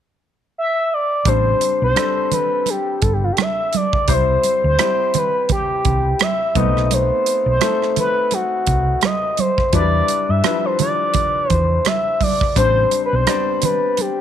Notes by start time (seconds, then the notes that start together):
0.58 E5
0.94 D5
1.25 A1 G3 C4 D4 C5, kick, closed hi-hat, muted conga
1.61 closed hi-hat, muted conga
1.82 B1 C5
1.95 G3 C4 D4 A4, cross-stick, closed hi-hat, high conga
2.32 B4, closed hi-hat, muted conga, low conga
2.66 G4, closed hi-hat, muted conga
3.02 G1 A4, kick, closed hi-hat
3.13 G4
3.24 F4
3.32 G4
3.37 cross-stick, closed hi-hat, high conga
3.41 E5
3.73 D5, closed hi-hat, high conga
3.93 kick
4.08 C2 G3 C4 E4 C5, kick, closed hi-hat, muted conga
4.13 C5
4.43 closed hi-hat, muted conga
4.64 D2 C5
4.78 G3 C4 E4 G4, cross-stick, closed hi-hat, high conga
5.14 B4, closed hi-hat, muted conga, low conga
5.49 G4, kick, closed hi-hat, muted conga, low conga
5.85 C2, kick, closed hi-hat, low conga
6.19 E5, cross-stick, closed hi-hat, high conga
6.55 B1 A3 B3 C4 D#4 D#5, kick, closed hi-hat, high conga
6.77 cross-stick
6.87 D#5
6.91 C5, closed hi-hat, muted conga
7.26 closed hi-hat
7.46 B1 C5
7.60 A3 C4 D#4 A4, cross-stick, closed hi-hat, high conga
7.82 cross-stick
7.96 B4, closed hi-hat, muted conga, low conga
8.31 F#4, closed hi-hat, muted conga
8.66 C2, kick, closed hi-hat
9.01 D#5, cross-stick, closed hi-hat, high conga
9.37 C5, closed hi-hat, high conga
9.58 kick, cross-stick
9.73 E2 F#3 D4 E4 B4 D5, kick, closed hi-hat, muted conga
9.79 G3
10.08 closed hi-hat, muted conga
10.29 G2 E5
10.44 F3 D4 E4 B4, cross-stick, closed hi-hat, high conga
10.50 G3
10.65 C5
10.79 D5, closed hi-hat, muted conga, low conga
11.14 kick, closed hi-hat, muted conga, low conga
11.50 E2 C5, kick, closed hi-hat, low conga
11.85 E5, cross-stick, closed hi-hat, high conga
12.21 D5, kick, open hi-hat, high conga
12.41 kick, cross-stick
12.56 A1 G3 C4 D4 C5, kick, closed hi-hat, muted conga
12.91 closed hi-hat, muted conga
13.05 B4
13.13 B1 C5
13.26 G3 B3 D4 D5, cross-stick, closed hi-hat, high conga
13.33 C4
13.62 B4, closed hi-hat, muted conga, low conga
13.97 G4, closed hi-hat, muted conga